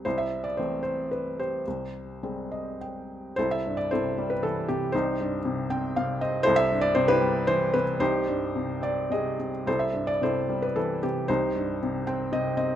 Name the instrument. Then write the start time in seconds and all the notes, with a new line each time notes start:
felt piano
0.05 C2 E4 C5
0.18 E5
0.44 D5
0.57 E3 A3 C4 C5
0.83 C5
1.11 B4
1.39 G4 C5
1.67 C2
2.23 G3 G#3 C4
2.51 D#5
2.81 G5
3.36 C2 E4 A4 C5
3.51 E5
3.67 G2
3.77 D5
3.91 C3 E4 A4 C5
4.18 G3
4.30 B4
4.43 E3 A4
4.68 C3 G4
4.92 C2 D#4 G4 C5
5.21 G2
5.45 C3
5.70 C4 G5
5.96 C3 F5
6.21 C4 D#5
6.43 C2 E4 A4 C5
6.56 E5
6.72 G2
6.81 D5
6.95 C3 C5
7.08 E4 G4 B4
7.22 G3
7.47 E3 C5
7.74 C3 B4
8.00 C2 D#4 G4 C5
8.28 G2
8.56 C3
8.81 C4 D5
9.10 C3 G4 G#4 D#5
9.39 C4
9.66 C2 E4 A4 C5
9.79 E5
9.93 G2
10.07 D5
10.21 C3 E4 A4 C5
10.49 G3
10.62 B4
10.76 E3 A4
11.03 C3 G4
11.28 C2 D#4 G4 C5
11.55 G2
11.83 C3
12.07 C4 G5
12.32 C3 D#5
12.57 C4 D#5